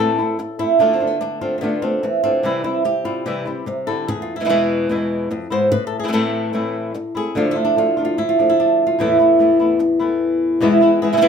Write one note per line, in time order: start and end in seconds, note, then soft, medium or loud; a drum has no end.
0.00 0.18 A2 medium
0.00 0.80 A2 medium
0.00 0.18 E3 medium
0.00 0.19 A3 medium
0.00 0.18 C4 medium
0.00 0.78 C4 soft
0.00 0.17 E4 medium
0.00 0.59 A4 medium
0.18 0.38 A3 soft
0.18 0.38 C4 soft
0.18 0.39 E4 soft
0.39 muted nylon-string guitar stroke soft
0.59 0.78 A3 soft
0.59 0.80 C4 soft
0.59 0.79 E4 soft
0.59 0.80 E4 medium
0.79 1.00 D3 medium
0.79 2.03 D3 medium
0.79 1.00 A3 medium
0.79 2.42 A3 soft
0.79 0.93 D4 medium
0.79 1.00 D4 medium
0.79 0.99 F4 medium
0.93 1.07 C4 medium
1.00 1.20 A3 soft
1.00 1.21 D4 soft
1.00 1.20 F4 soft
1.07 1.20 B3 medium
1.21 1.41 D4 medium
1.21 muted nylon-string guitar stroke soft
1.41 1.61 A3 soft
1.41 1.57 C4 medium
1.41 1.62 D4 soft
1.41 1.61 F4 soft
1.58 1.82 D3 medium
1.58 1.82 B3 medium
1.58 1.61 C4 medium
1.62 1.82 A3 medium
1.62 1.82 D4 medium
1.62 1.81 F4 medium
1.82 2.02 A3 soft
1.82 2.22 C4 medium
1.82 2.03 D4 soft
1.82 2.02 F4 soft
2.03 2.24 E3 medium
2.03 muted nylon-string guitar stroke soft
2.23 2.45 D3 medium
2.23 2.44 A3 soft
2.23 3.05 C4 medium
2.23 2.44 D4 soft
2.23 2.43 F4 soft
2.43 2.64 C3 medium
2.43 3.65 C3 medium
2.43 2.64 E3 medium
2.43 3.46 G3 soft
2.43 2.64 G3 medium
2.43 2.64 C4 medium
2.43 2.63 E4 medium
2.64 2.84 G3 soft
2.64 2.85 C4 soft
2.64 2.84 E4 soft
2.64 2.85 E4 medium
2.85 3.25 G4 medium
2.85 muted nylon-string guitar stroke soft
3.05 3.26 G3 soft
3.05 3.26 C4 soft
3.05 3.25 E4 soft
3.05 3.26 F4 medium
3.26 3.46 C3 medium
3.26 3.46 E3 medium
3.26 3.46 G3 medium
3.26 3.46 C4 medium
3.26 3.44 E4 medium
3.26 3.87 G4 medium
3.46 4.08 G3 soft
3.46 3.66 G3 soft
3.46 3.66 C4 soft
3.46 3.66 E4 soft
3.66 3.87 C3 soft
3.66 muted nylon-string guitar stroke soft
3.87 4.08 D3 medium
3.87 4.08 G3 soft
3.87 4.08 C4 soft
3.87 4.07 E4 soft
3.87 4.08 A4 medium
4.08 5.31 E2 medium
4.08 4.36 G#4 medium
4.08 muted nylon-string guitar stroke soft
4.22 4.36 F4 medium
4.36 4.50 E4 medium
4.40 4.44 B2 soft
4.40 4.44 E3 soft
4.40 4.44 G#3 soft
4.40 4.44 B3 soft
4.40 4.45 E4 soft
4.45 4.48 B2 soft
4.45 4.49 E3 soft
4.45 4.49 G#3 soft
4.45 4.49 B3 soft
4.45 4.49 E4 soft
4.49 4.88 E2 medium
4.49 4.89 B2 medium
4.49 4.90 E3 medium
4.49 4.90 G#3 medium
4.49 4.90 B3 medium
4.49 4.90 E4 medium
4.49 5.11 G#4 medium
4.89 5.29 E2 medium
4.89 5.29 B2 soft
4.89 5.30 E3 medium
4.89 5.30 G#3 medium
4.89 5.30 B3 medium
4.89 5.30 E4 medium
5.31 5.51 F2 medium
5.31 muted nylon-string guitar stroke soft
5.50 5.72 G#2 medium
5.50 5.72 E3 soft
5.50 5.71 G#3 soft
5.50 5.71 B3 soft
5.50 5.71 E4 soft
5.50 5.72 C5 medium
5.72 7.35 A2 medium
5.72 5.86 B4 medium
5.72 muted nylon-string guitar stroke medium
5.87 5.99 A4 medium
6.00 6.13 G#4 medium
6.04 6.07 E3 soft
6.04 6.07 A3 soft
6.04 6.08 C4 soft
6.04 6.08 E4 soft
6.08 6.12 E3 soft
6.08 6.12 A3 soft
6.08 6.12 C4 soft
6.08 6.13 E4 soft
6.13 6.52 A2 medium
6.13 6.52 E3 medium
6.13 6.53 A3 medium
6.13 6.53 C4 medium
6.13 6.54 E4 medium
6.13 6.75 A4 medium
6.53 6.93 A2 medium
6.53 6.94 E3 medium
6.53 6.94 A3 medium
6.53 6.94 C4 medium
6.53 6.94 E4 medium
6.94 muted nylon-string guitar stroke soft
7.15 7.35 A3 soft
7.15 7.35 C4 soft
7.15 7.35 E4 soft
7.15 7.36 G#4 medium
7.35 7.55 D3 medium
7.35 8.97 D3 medium
7.35 8.38 F3 soft
7.35 7.55 A3 medium
7.35 7.56 D4 medium
7.35 7.54 F4 medium
7.35 7.64 F4 medium
7.51 8.05 E4 medium
7.56 7.76 A3 soft
7.56 7.76 D4 soft
7.56 7.75 F4 soft
7.65 7.77 D4 medium
7.76 7.96 D3 soft
7.76 7.96 A3 soft
7.76 7.97 D4 soft
7.76 8.04 F4 medium
7.76 7.96 F4 soft
7.97 8.17 A3 soft
7.97 8.17 D4 soft
7.97 8.17 F4 soft
8.05 8.28 F4 medium
8.18 8.48 E4 medium
8.18 muted nylon-string guitar stroke medium
8.29 8.59 F4 medium
8.39 8.98 F3 soft
8.39 8.99 A3 soft
8.39 8.99 D4 soft
8.49 9.00 E4 medium
8.60 8.86 D4 medium
8.87 9.00 F4 medium
8.99 9.18 E2 medium
8.99 10.60 E2 medium
8.99 9.19 A2 medium
8.99 10.61 A2 soft
8.99 9.19 E3 medium
8.99 9.19 A3 medium
8.99 9.19 B3 medium
8.99 9.39 B3 soft
8.99 9.18 E4 medium
8.99 10.62 E4 medium
9.19 9.38 E3 soft
9.19 9.39 A3 soft
9.19 9.39 B3 soft
9.19 9.39 E4 soft
9.39 9.59 E3 soft
9.39 9.59 A3 soft
9.39 10.00 B3 soft
9.39 9.59 B3 soft
9.39 9.58 E4 soft
9.60 9.79 E3 soft
9.60 9.79 A3 soft
9.60 9.79 B3 soft
9.60 9.79 E4 soft
9.79 muted nylon-string guitar stroke soft
9.99 10.60 E3 soft
9.99 10.61 A3 soft
9.99 10.61 B3 soft
9.99 10.59 B3 soft
9.99 10.60 E4 soft
10.61 10.81 E2 medium
10.61 10.81 B2 medium
10.61 10.81 E3 medium
10.61 10.81 G#3 medium
10.61 10.80 B3 medium
10.61 10.82 B3 medium
10.61 10.81 E4 medium
10.61 10.79 E4 medium
10.81 11.02 E3 soft
10.81 11.01 E3 soft
10.81 11.02 G#3 soft
10.81 11.01 B3 soft
10.81 11.02 B3 medium
10.81 11.01 E4 soft
10.81 11.02 E4 medium
11.02 11.22 E3 medium
11.02 11.12 E3 soft
11.02 11.22 G#3 medium
11.02 11.12 G#3 soft
11.02 11.12 B3 soft
11.02 11.22 B3 medium
11.02 11.12 E4 soft
11.02 11.21 E4 medium
11.02 11.22 G#4 medium
11.13 11.16 B2 soft
11.13 11.16 E3 soft
11.13 11.16 G#3 soft
11.13 11.17 B3 soft
11.13 11.17 E4 soft
11.17 11.21 B2 medium
11.17 11.21 E3 medium
11.17 11.21 G#3 medium
11.17 11.21 B3 medium
11.17 11.22 E4 medium
11.21 11.28 E2 medium
11.21 11.28 B2 medium
11.21 11.28 E3 medium
11.21 11.28 E3 soft
11.21 11.28 G#3 medium
11.21 11.28 G#3 soft
11.21 11.28 B3 medium
11.21 11.28 B3 soft
11.21 11.28 E4 medium
11.21 11.28 F4 medium